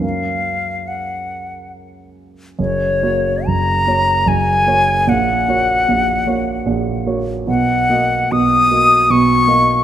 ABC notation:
X:1
M:3/4
L:1/8
Q:1/4=74
K:F#
V:1 name="Flute"
e2 f2 z2 | c2 a2 g2 | f4- f z | f2 d'2 c'2 |]
V:2 name="Grand piano"
[F,,A,CA]6 | [F,,,F,,] [A,Fc] [F,,,F,,] [A,Fc] [F,,,F,,] [A,Fc] | [A,,,A,,] [A,Fc] [A,,,A,,] [A,Fc] [A,,,A,,] [A,Fc] | [B,,,B,,] [A,Fd] [B,,,B,,] [A,Fd] [B,,,B,,] [A,Fd] |]